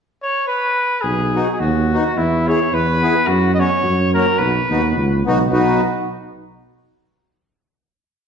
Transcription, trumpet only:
0.23 C#5
0.48 B4
1.02 G#4
1.53 G#4
1.60 F#4
2.17 E4
2.48 C#5
2.74 B4
3.27 F#4
3.54 D#5
3.60 C#5
4.14 A#4
4.38 B4
5.51 B4

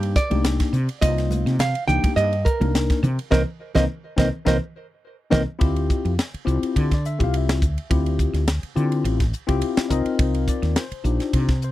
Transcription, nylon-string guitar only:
Already playing: G4
0.16 D5
1.01 D#5
1.60 F5
1.88 G5
2.16 D#5
2.45 A#4
3.31 A#4 C5 D#5
3.75 A#4 C5 D#5
4.18 A#4 C5 D#5
4.47 A#4 C5 D#5
5.31 A#4 C5 D#5

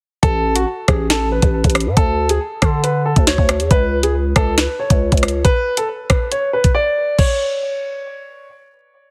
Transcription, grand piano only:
0.23 A4
0.55 F#4
0.88 G#4
1.10 A4
1.32 B4
1.97 A4
2.30 G#4
2.62 A4
2.83 B4
3.06 A4
3.27 C#5
3.71 B4
4.03 G#4
4.36 A4
4.58 B4
4.79 C#5
5.45 B4
5.77 A4
6.10 B4
6.31 C#5
6.53 B4
6.75 D5
7.18 C#5

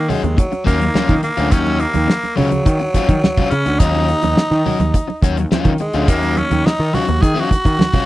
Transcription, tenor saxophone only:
Already playing: A#3
0.10 G#3
0.38 F#3
0.66 A#3
1.23 A#3
1.51 C#4
1.80 A#3
2.36 F#3
3.50 C#4
3.79 D#4
5.81 G#3
6.10 A#3
6.38 C#4
6.66 D#4
6.94 F#4
7.22 G#4
7.40 F#4

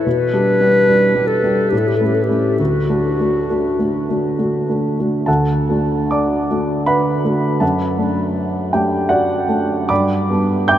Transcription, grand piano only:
0.06 B2
0.33 G3 D4 G4
0.60 G3 D4 G4
0.88 G3 D4 G4
1.14 G3 D4 G4
1.43 G3 D4 G4
1.72 A2
2.01 A3 C#4 E4
2.29 A3 C#4 E4
2.59 D2
2.89 A3 D4 F#4
3.20 A3 D4 F#4
3.50 A3 D4 F#4
3.79 A3 D4 F#4
4.09 A3 D4 F#4
4.39 A3 D4 F#4
4.69 A3 D4 F#4
5.00 A3 D4 F#4
5.26 D2 A4 F#5 A5
5.69 A3 D4 F#4
6.11 D5 A5 D6
6.50 A3 D4 F#4
6.86 B4 F#5 B5
7.24 A3 D4 F#4
7.60 F#2 A4 F#5 A5
7.98 A3 D4
8.73 A3 D4 G4 G5
9.09 F#4 D5 F#5
9.48 A3 D4
9.89 G2 D5 B5 D6
10.30 G3 B3 D4
10.68 G5 D6 G6

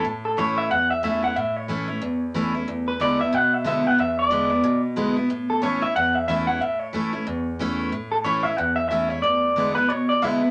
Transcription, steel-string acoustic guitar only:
0.05 A2
0.37 E3 A3 C#4 E4
0.71 E2
1.03 E3 A3 C#4 E4
1.23 C#4 E4
1.36 A2
1.68 E3 A3 C#4 E4
1.88 C#4 E4
2.02 E2
2.34 E3 A3 C#4 E4
2.55 C#4 E4
2.68 E2
3.00 D3 G#3 B3 E4
3.19 B3 E4
3.33 B2
3.64 D3 G#3 B3 E4
3.84 B3 E4
3.98 E2
4.30 D3 G#3 B3 E4
4.50 B3 E4
4.64 B2
4.96 D3 G#3 B3 E4
5.16 B3 E4
5.30 A2
5.62 E3 A3 C#4 E4
5.81 C#4 E4
5.96 E2
6.28 E3 A3 C#4 E4
6.48 C#4 E4
6.61 A2
6.93 E3 A3 C#4 E4
7.13 C#4 E4
7.27 E2
7.59 E3 A3 C#4 E4
7.92 A2
8.24 E3 A3 C#4 E4
8.44 C#4 E4
8.58 E2
8.91 E3 A3 C#4 E4
9.10 C#4 E4
9.24 E2
9.56 D3 G#3 B3 E4
9.75 B3 E4
9.90 B2
10.22 D3 G#3 B3 E4
10.42 B3 E4

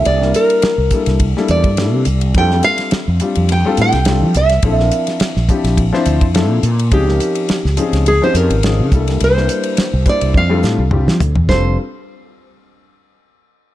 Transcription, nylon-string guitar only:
0.06 D5
0.36 A#4
1.51 D5
2.38 G5
2.64 F5
3.52 G5
3.81 G5
4.37 E5
4.78 D5
6.93 G4
8.08 G#4
8.24 C5
8.36 A#4
9.24 C5
10.09 D5
10.37 F5
11.49 C5

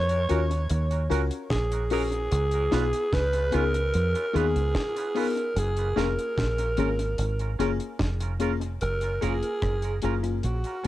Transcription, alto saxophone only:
Already playing: C#5
1.51 G#4
1.93 G#4
3.14 B4
3.56 A#4
4.37 G#4
5.18 A#4
5.58 G#4
5.99 A#4
8.82 A#4
9.23 G#4
10.45 F#4

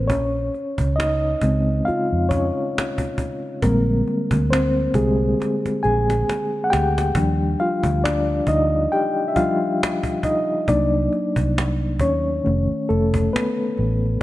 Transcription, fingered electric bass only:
Already playing: A1
0.11 A#1
0.79 C#2
1.43 C#2
1.89 muted fingered electric bass stroke
2.13 F2
3.64 A#1
4.32 D2
4.95 C2
5.65 muted fingered electric bass stroke
5.85 A#1
6.73 D2
7.16 D#2
7.85 D2
8.48 D2
10.69 C2
11.37 C2
12.01 D#2
12.47 F1
12.71 muted fingered electric bass stroke
12.90 F1
13.79 A1

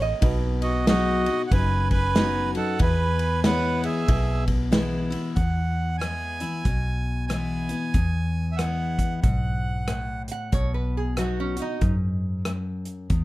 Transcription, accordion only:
0.62 F#4 D#5
0.88 F#4 D#5
1.47 F#5
1.52 B4 G#5
1.91 B4 G#5
2.57 A4 F#5
2.81 B4 G#5
3.45 B4 F#5
3.85 G#4 E5
5.36 F#5
5.98 G#5
7.27 G#5
8.52 E5
8.57 F#5
9.21 F#5

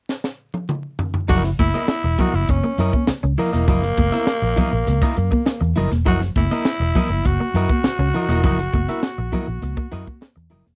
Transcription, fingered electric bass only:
1.29 F#1
1.59 F#1
2.04 E1
2.33 F#1
2.49 F#1
2.78 F#2
3.08 muted fingered electric bass stroke
3.23 C#2
3.53 E1
3.68 F#1
3.97 F#1
4.42 A#1
4.73 A#1
4.88 C#2
5.17 F#2
5.61 E2
5.76 F#1
5.92 E1
6.06 F#1
6.36 F#1
6.80 E1
7.10 F#1
7.25 F#1
7.54 F#2
7.85 muted fingered electric bass stroke
7.99 C#2
8.28 E1
8.44 F#1
8.73 F#1
9.18 A#1
9.48 A#1
9.62 C#2
9.93 F#2
10.36 E2
10.51 F#1
10.67 E1

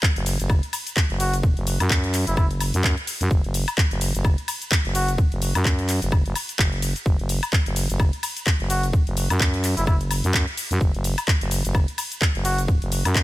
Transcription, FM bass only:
0.16 F#1
0.40 F#1
1.10 F#1
1.57 F#1
1.80 F#2
2.27 F#1
2.74 F#2
3.21 F#2
3.31 F#1
3.44 F#1
3.91 F#1
4.15 F#1
4.85 F#1
5.32 F#1
5.55 F#2
6.02 F#1
6.26 F#1
6.59 F#1
7.06 F#1
7.19 F#1
7.66 F#1
7.90 F#1
8.60 F#1
9.07 F#1
9.30 F#2
9.77 F#1
10.24 F#2
10.71 F#2
10.81 F#1
10.94 F#1
11.41 F#1
11.65 F#1
12.35 F#1
12.82 F#1
13.05 F#2

